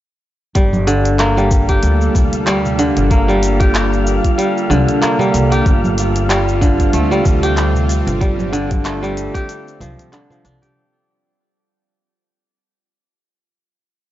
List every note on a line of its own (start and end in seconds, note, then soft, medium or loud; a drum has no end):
0.54 1.77 G1 medium
0.54 10.72 G3 medium
0.54 0.92 G3 medium
0.54 5.62 A#3 medium
0.54 5.62 D4 medium
0.54 10.79 F4 medium
0.54 10.72 A4 medium
0.54 10.79 F5 medium
0.54 kick loud
0.54 closed hi-hat medium
0.54 cabasa soft
0.73 low conga medium
0.73 cabasa soft
0.87 2.78 D3 medium
0.87 closed hi-hat soft
0.87 cabasa medium
1.05 closed hi-hat soft
1.05 cabasa soft
1.19 3.10 A#3 medium
1.19 clap loud
1.19 closed hi-hat medium
1.19 cabasa soft
1.37 2.45 G3 medium
1.37 cabasa soft
1.51 kick loud
1.51 cabasa medium
1.69 3.10 G4 medium
1.69 kick medium
1.69 closed hi-hat soft
1.69 cabasa soft
1.83 2.07 D2 medium
1.83 closed hi-hat medium
1.83 cabasa soft
2.01 cabasa soft
2.14 2.89 D2 medium
2.14 kick loud
2.14 darbuka dum medium
2.14 cabasa medium
2.33 closed hi-hat soft
2.33 cabasa soft
2.46 2.84 G3 medium
2.46 clap medium
2.46 closed hi-hat medium
2.46 cabasa soft
2.65 darbuka dum medium
2.65 cabasa soft
2.79 4.69 D3 medium
2.79 closed hi-hat soft
2.79 cabasa medium
2.97 4.16 G1 medium
2.97 closed hi-hat soft
2.97 darbuka ka medium
2.97 darbuka tek soft
2.97 darbuka dum medium
2.97 cabasa soft
3.10 5.01 A#3 medium
3.10 kick loud
3.10 closed hi-hat soft
3.10 cabasa soft
3.28 4.37 G3 medium
3.28 cabasa soft
3.43 closed hi-hat soft
3.43 cabasa medium
3.60 5.01 G4 loud
3.60 kick loud
3.60 closed hi-hat soft
3.60 cabasa soft
3.75 clap loud
3.75 closed hi-hat medium
3.75 cabasa soft
3.92 darbuka ka medium
3.92 cabasa soft
4.07 cabasa medium
4.25 kick medium
4.25 closed hi-hat soft
4.25 cabasa soft
4.38 4.75 G3 medium
4.38 closed hi-hat medium
4.38 cabasa soft
4.58 cabasa soft
4.70 4.83 C2 medium
4.70 5.71 D3 medium
4.70 low conga medium
4.70 cabasa medium
4.88 closed hi-hat soft
4.88 darbuka dum medium
4.88 cabasa soft
5.02 6.99 A#3 medium
5.02 clap medium
5.02 closed hi-hat medium
5.02 cabasa soft
5.19 5.71 G3 medium
5.19 darbuka dum medium
5.19 cabasa soft
5.34 5.58 C2 medium
5.34 closed hi-hat soft
5.34 darbuka tek medium
5.34 cabasa medium
5.50 6.93 G4 loud
5.50 closed hi-hat soft
5.50 darbuka ka medium
5.50 darbuka dum medium
5.50 cabasa soft
5.65 6.88 G1 loud
5.65 10.72 C4 medium
5.65 10.72 F4 medium
5.65 kick loud
5.65 closed hi-hat soft
5.65 cabasa soft
5.84 low conga medium
5.84 cabasa soft
5.98 closed hi-hat soft
5.98 cabasa medium
6.16 closed hi-hat soft
6.16 cabasa soft
6.29 6.67 G3 medium
6.29 clap loud
6.29 closed hi-hat medium
6.29 cabasa soft
6.48 cabasa soft
6.61 8.51 D3 medium
6.61 kick loud
6.61 cabasa medium
6.80 kick medium
6.80 closed hi-hat soft
6.80 cabasa soft
6.93 7.18 D2 medium
6.93 8.84 A3 medium
6.93 closed hi-hat medium
6.93 cabasa soft
7.11 8.19 G3 medium
7.11 cabasa soft
7.25 7.99 D2 medium
7.25 kick loud
7.25 darbuka dum medium
7.25 cabasa medium
7.43 8.84 G4 loud
7.43 closed hi-hat soft
7.43 cabasa soft
7.57 clap medium
7.57 closed hi-hat medium
7.57 cabasa soft
7.75 darbuka dum medium
7.75 cabasa soft
7.89 closed hi-hat soft
7.89 cabasa medium
8.07 9.27 G1 medium
8.07 closed hi-hat soft
8.07 darbuka ka medium
8.07 darbuka tek soft
8.07 darbuka dum medium
8.07 cabasa soft
8.21 8.58 G3 medium
8.21 kick loud
8.21 closed hi-hat soft
8.21 cabasa soft
8.39 darbuka tek medium
8.39 low conga medium
8.39 cabasa soft
8.53 10.11 D3 loud
8.53 closed hi-hat soft
8.53 cabasa medium
8.71 kick loud
8.71 closed hi-hat soft
8.71 low conga medium
8.71 cabasa soft
8.85 10.84 A3 medium
8.85 clap loud
8.85 closed hi-hat medium
8.85 cabasa soft
9.03 10.18 G3 medium
9.03 darbuka ka medium
9.03 cabasa soft
9.17 closed hi-hat soft
9.17 cabasa medium
9.34 10.62 G4 loud
9.34 kick medium
9.34 closed hi-hat soft
9.34 cabasa soft
9.49 closed hi-hat medium
9.49 cabasa soft
9.68 cabasa soft
9.80 9.94 C2 medium
9.80 10.18 F3 medium
9.80 closed hi-hat soft
9.80 darbuka tek soft
9.80 low conga medium
9.80 cabasa medium
9.98 closed hi-hat soft
9.98 darbuka dum medium
9.98 cabasa soft
10.12 10.81 D3 medium
10.12 clap medium
10.12 closed hi-hat medium
10.12 cabasa soft
10.30 10.81 F3 medium
10.30 darbuka dum medium
10.30 cabasa soft
10.45 10.69 C2 medium
10.45 12.13 D4 medium
10.45 closed hi-hat soft
10.45 darbuka tek medium
10.45 cabasa medium
10.62 12.03 G4 medium
10.62 closed hi-hat soft
10.62 darbuka ka medium
10.62 darbuka dum medium
10.62 cabasa soft